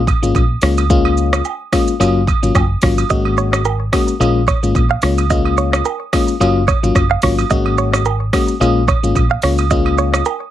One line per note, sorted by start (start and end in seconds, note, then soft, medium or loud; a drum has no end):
0.07 kick loud
0.07 high agogo medium
0.07 shaker medium
0.22 0.31 G#1 medium
0.22 0.42 G#3 medium
0.22 0.42 A#3 medium
0.22 0.43 C#4 medium
0.22 0.43 F4 medium
0.22 shaker medium
0.35 0.54 A#1 medium
0.35 kick loud
0.35 high agogo medium
0.35 shaker medium
0.62 1.40 C#2 loud
0.62 0.84 G#3 medium
0.62 0.84 A#3 medium
0.62 0.84 C#4 medium
0.62 0.84 F4 medium
0.62 cross-stick loud
0.62 open hi-hat medium
0.62 shaker medium
0.78 high agogo medium
0.78 shaker medium
0.90 1.41 G#3 medium
0.90 1.41 A#3 medium
0.90 1.41 C#4 medium
0.90 1.41 F4 loud
0.90 kick loud
0.90 shaker medium
1.05 high agogo medium
1.17 shaker medium
1.33 cross-stick loud
1.33 high agogo medium
1.33 shaker medium
1.45 low woodblock medium
1.45 shaker medium
1.72 1.94 G#3 medium
1.72 1.94 A#3 medium
1.72 1.94 C#4 medium
1.72 1.94 F4 medium
1.72 kick medium
1.72 cross-stick medium
1.72 open hi-hat medium
1.72 high agogo medium
1.72 shaker medium
1.88 shaker medium
2.00 2.30 F#1 loud
2.00 2.21 F#3 loud
2.00 2.21 A#3 medium
2.00 2.21 C#4 medium
2.00 2.22 F4 loud
2.00 high agogo medium
2.00 shaker medium
2.27 kick medium
2.27 high agogo medium
2.27 shaker medium
2.42 2.51 G#1 loud
2.42 2.62 F#3 medium
2.42 2.63 A#3 medium
2.42 2.63 C#4 medium
2.42 2.63 F4 medium
2.42 shaker medium
2.55 2.74 F#1 medium
2.55 kick loud
2.55 cross-stick medium
2.55 high agogo medium
2.55 low woodblock medium
2.55 shaker medium
2.82 3.02 G#1 loud
2.82 3.04 F#3 medium
2.82 3.04 A#3 medium
2.82 3.04 C#4 medium
2.82 3.04 F4 medium
2.82 kick loud
2.82 cross-stick loud
2.82 open hi-hat medium
2.82 shaker medium
2.98 high agogo medium
2.98 shaker medium
3.10 3.89 G#1 loud
3.10 3.61 G#3 medium
3.10 3.61 A#3 medium
3.10 3.61 C#4 medium
3.10 3.61 F#4 loud
3.10 3.20 D#5 loud
3.10 kick loud
3.10 shaker medium
3.25 high agogo medium
3.37 3.48 C#5 medium
3.37 shaker medium
3.53 cross-stick loud
3.53 high agogo medium
3.53 shaker medium
3.65 3.84 A#4 medium
3.65 low woodblock medium
3.65 shaker medium
3.92 4.14 G#3 medium
3.92 4.14 A#3 medium
3.92 4.14 C#4 medium
3.92 4.14 F#4 medium
3.92 kick medium
3.92 cross-stick loud
3.92 open hi-hat medium
3.92 high agogo medium
3.92 shaker medium
4.08 shaker medium
4.20 4.50 A#1 loud
4.20 4.41 G#3 loud
4.20 4.42 A#3 medium
4.20 4.42 C#4 medium
4.20 4.42 F4 loud
4.20 high agogo medium
4.20 shaker medium
4.48 4.58 C#5 medium
4.48 kick loud
4.48 high agogo medium
4.48 shaker medium
4.63 4.72 G#1 medium
4.63 4.83 G#3 medium
4.63 4.83 A#3 medium
4.63 4.83 C#4 medium
4.63 4.83 F4 medium
4.63 shaker medium
4.75 4.95 A#1 medium
4.75 kick loud
4.75 high agogo medium
4.75 shaker medium
4.91 4.99 F5 medium
5.02 5.80 C#2 loud
5.02 5.24 G#3 medium
5.02 5.24 A#3 medium
5.02 5.24 C#4 medium
5.02 5.24 F4 medium
5.02 5.13 C#5 medium
5.02 cross-stick loud
5.02 open hi-hat medium
5.02 shaker medium
5.18 high agogo medium
5.18 shaker medium
5.30 5.81 G#3 loud
5.30 5.81 A#3 medium
5.30 5.81 C#4 medium
5.30 5.82 F4 loud
5.30 5.40 D#5 loud
5.30 kick loud
5.30 shaker loud
5.45 high agogo medium
5.58 5.68 C#5 medium
5.58 shaker medium
5.73 cross-stick loud
5.73 high agogo medium
5.73 shaker medium
5.85 6.04 A#4 medium
5.85 low woodblock medium
5.85 shaker medium
6.13 6.34 G#3 medium
6.13 6.34 A#3 medium
6.13 6.34 C#4 medium
6.13 6.34 F4 medium
6.13 kick medium
6.13 cross-stick medium
6.13 open hi-hat medium
6.13 high agogo medium
6.13 shaker medium
6.28 shaker medium
6.40 6.71 F#1 loud
6.40 6.62 F#3 loud
6.40 6.62 A#3 medium
6.40 6.62 C#4 medium
6.40 6.62 F4 loud
6.40 high agogo medium
6.40 shaker medium
6.68 6.78 C#5 medium
6.68 kick loud
6.68 high agogo medium
6.68 shaker medium
6.83 6.92 G#1 loud
6.83 7.03 F#3 medium
6.83 7.03 A#3 medium
6.83 7.03 C#4 medium
6.83 7.03 F4 medium
6.83 shaker medium
6.95 7.15 F#1 medium
6.95 kick loud
6.95 cross-stick medium
6.95 high agogo medium
6.95 shaker medium
7.11 7.19 F5 medium
7.22 7.42 G#1 loud
7.22 7.44 F#3 medium
7.22 7.44 A#3 medium
7.22 7.44 C#4 medium
7.22 7.45 F4 medium
7.22 7.33 C#5 medium
7.22 kick loud
7.22 cross-stick loud
7.22 open hi-hat medium
7.22 shaker soft
7.38 high agogo medium
7.38 shaker medium
7.50 8.29 G#1 loud
7.50 8.01 G#3 loud
7.50 8.02 A#3 medium
7.50 8.02 C#4 medium
7.50 8.02 F#4 loud
7.50 7.61 D#5 loud
7.50 kick loud
7.50 shaker loud
7.66 high agogo medium
7.78 7.88 C#5 medium
7.78 shaker medium
7.93 cross-stick loud
7.93 high agogo medium
7.93 shaker medium
8.05 8.24 A#4 medium
8.05 low woodblock medium
8.05 shaker medium
8.33 8.54 G#3 medium
8.33 8.54 A#3 medium
8.33 8.55 C#4 medium
8.33 8.55 F#4 medium
8.33 kick medium
8.33 cross-stick medium
8.33 open hi-hat medium
8.33 high agogo medium
8.33 shaker medium
8.48 shaker medium
8.60 8.91 A#1 loud
8.60 8.82 G#3 loud
8.60 8.82 A#3 medium
8.60 8.82 C#4 medium
8.60 8.82 F4 loud
8.60 high agogo medium
8.60 shaker medium
8.88 8.98 C#5 medium
8.88 kick loud
8.88 high agogo medium
8.88 shaker medium
9.03 9.12 G#1 medium
9.03 9.23 G#3 medium
9.03 9.23 A#3 medium
9.03 9.23 C#4 medium
9.03 9.23 F4 medium
9.03 shaker medium
9.15 9.35 A#1 loud
9.15 kick loud
9.15 high agogo medium
9.15 shaker medium
9.31 9.39 F5 medium
9.42 10.21 C#2 loud
9.42 9.64 G#3 medium
9.42 9.65 A#3 medium
9.42 9.65 C#4 medium
9.42 9.65 F4 medium
9.42 9.53 C#5 medium
9.42 cross-stick loud
9.42 open hi-hat medium
9.42 shaker medium
9.58 high agogo medium
9.58 shaker medium
9.71 10.22 G#3 loud
9.71 10.22 A#3 medium
9.71 10.22 C#4 medium
9.71 10.22 F4 loud
9.71 9.81 D#5 loud
9.71 kick loud
9.71 shaker medium
9.86 high agogo medium
9.98 10.08 C#5 medium
9.98 shaker medium
10.14 cross-stick loud
10.14 high agogo medium
10.14 shaker medium
10.25 10.44 A#4 medium
10.25 low woodblock medium
10.25 shaker medium